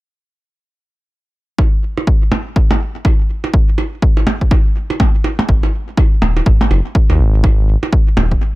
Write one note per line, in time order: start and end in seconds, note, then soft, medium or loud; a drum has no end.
1.58 kick loud
1.58 percussion blips soft
1.98 percussion blips soft
2.07 kick loud
2.32 percussion blips soft
2.32 percussion blips medium
2.56 kick loud
2.71 percussion blips soft
2.71 percussion blips medium
3.05 kick loud
3.05 percussion blips soft
3.44 percussion blips soft
3.54 kick loud
3.78 percussion blips soft
4.02 kick loud
4.17 percussion blips soft
4.27 percussion blips medium
4.41 kick medium
4.51 kick loud
4.51 percussion blips soft
4.90 percussion blips soft
5.00 kick loud
5.00 percussion blips medium
5.24 percussion blips soft
5.39 percussion blips medium
5.49 5.59 G#1 loud
5.49 kick loud
5.63 percussion blips soft
5.97 kick loud
5.97 percussion blips soft
6.22 6.41 D#1 loud
6.22 percussion blips medium
6.37 percussion blips soft
6.46 6.57 G#1 medium
6.46 kick loud
6.61 percussion blips medium
6.71 6.81 F#1 loud
6.71 percussion blips soft
6.95 kick loud
7.10 7.21 D#2 medium
7.10 percussion blips soft
7.19 7.76 G#1 loud
7.44 kick loud
7.44 percussion blips soft
7.83 percussion blips soft
7.93 kick loud
8.17 8.36 D#1 loud
8.17 percussion blips soft
8.17 percussion blips medium
8.32 kick medium